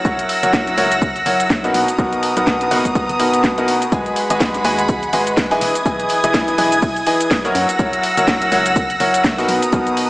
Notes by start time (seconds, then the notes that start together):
Already playing: F#5 E6 A#6
0.05 F#1 F#3 E4 F#4 A#4 C#5 F#5, kick, shaker
0.19 E1, closed hi-hat, shaker
0.29 open hi-hat
0.43 F#1 F#3 E4 F#4 A#4 C#5 F#5, closed hi-hat, shaker
0.53 kick, snare, shaker
0.67 closed hi-hat, shaker
0.78 C#2 F#3 E4 F#4 A#4 C#5 F#5, open hi-hat
0.92 closed hi-hat, shaker
1.02 kick, shaker
1.16 closed hi-hat, shaker
1.26 F#1 F#3 E4 F#4 A#4 C#5 F#5, open hi-hat
1.40 closed hi-hat, shaker
1.50 kick, snare, shaker
1.64 B2 D#4 F#4 A#4 B4 F#5, closed hi-hat, shaker
1.74 B1 B3 A#5 D#6, open hi-hat
1.88 closed hi-hat, shaker
1.99 B1 B2 D#4 F#4 A#4 B4 F#5, kick, shaker
2.12 F#1, closed hi-hat, shaker
2.23 open hi-hat
2.37 B1 B2 D#4 F#4 A#4 B4 F#5, closed hi-hat, shaker
2.47 kick, snare, shaker
2.61 closed hi-hat, shaker
2.71 F#1 B2 D#4 F#4 A#4 B4 F#5, open hi-hat
2.85 kick, closed hi-hat, shaker
2.95 F#1, kick, shaker
3.09 F#1, closed hi-hat, shaker
3.20 B2 D#4 F#4 A#4 B4 F#5, open hi-hat
3.34 closed hi-hat, shaker
3.44 kick, snare, shaker
3.58 B2 D#4 F#4 A#4 B4 F#5, closed hi-hat, shaker
3.68 open hi-hat
3.82 closed hi-hat, shaker
3.92 G#1 G#3 F#4 G#4 B4 D#5 F#5 G#5 B5, kick, closed hi-hat, shaker
4.06 F#1, closed hi-hat, shaker
4.16 closed hi-hat, open hi-hat
4.30 G#1 G#3 F#4 G#4 B4 D#5 G#5, closed hi-hat, shaker
4.40 kick, snare, closed hi-hat, shaker
4.54 closed hi-hat, shaker
4.64 D#2 G#3 F#4 G#4 B4 D#5 G#5, closed hi-hat, open hi-hat
4.79 closed hi-hat, shaker
4.88 kick, closed hi-hat, shaker
5.03 closed hi-hat, shaker
5.13 G#1 G#3 F#4 G#4 B4 D#5 G#5, closed hi-hat, open hi-hat
5.27 closed hi-hat, shaker
5.37 kick, snare, closed hi-hat, shaker
5.51 E3 E4 G#4 B4 D#5 G#5, snare, closed hi-hat, shaker
5.61 E1 E4 D#6 G#6, closed hi-hat, open hi-hat
5.75 closed hi-hat, shaker
5.86 E1 E3 E4 G#4 B4 D#5 G#5, kick, closed hi-hat, shaker
6.00 B1, closed hi-hat, shaker
6.09 closed hi-hat, open hi-hat
6.24 E1 E3 E4 G#4 B4 D#5 G#5, closed hi-hat, shaker
6.34 kick, snare, closed hi-hat, shaker
6.48 closed hi-hat, shaker
6.58 B1 E3 E4 G#4 B4 D#5 G#5, closed hi-hat, open hi-hat
6.72 closed hi-hat, shaker
6.82 kick, open hi-hat, shaker
6.96 closed hi-hat, shaker
7.07 E3 E4 G#4 B4 D#5 G#5, closed hi-hat, open hi-hat
7.21 closed hi-hat, shaker
7.31 kick, snare, closed hi-hat, shaker
7.45 F#3 E4 F#4 A#4 C#5 F#5, closed hi-hat, shaker
7.55 F#2 F#5 E6 A#6, closed hi-hat, open hi-hat
7.69 closed hi-hat, shaker
7.79 F#1 F#3 E4 F#4 A#4 C#5 F#5, kick, closed hi-hat, shaker
7.93 E1, closed hi-hat, shaker
8.03 closed hi-hat, open hi-hat
8.17 F#1 F#3 E4 F#4 A#4 C#5 F#5, closed hi-hat, shaker
8.28 kick, snare, closed hi-hat, shaker
8.42 closed hi-hat, shaker
8.52 C#2 F#3 E4 F#4 A#4 C#5 F#5, closed hi-hat, open hi-hat
8.66 closed hi-hat, shaker
8.76 kick, closed hi-hat, shaker
8.90 closed hi-hat, shaker
9.00 F#1 F#3 E4 F#4 A#4 C#5 F#5, closed hi-hat, open hi-hat
9.14 closed hi-hat, shaker
9.24 kick, snare, closed hi-hat, shaker
9.38 B2 D#4 F#4 A#4 B4 F#5, snare, closed hi-hat, shaker
9.48 B1 B3 A#5 D#6, closed hi-hat, open hi-hat
9.62 closed hi-hat, shaker
9.72 B1 B2 D#4 F#4 A#4 B4 F#5, kick, closed hi-hat, shaker
9.87 F#1, closed hi-hat, shaker
9.97 closed hi-hat, open hi-hat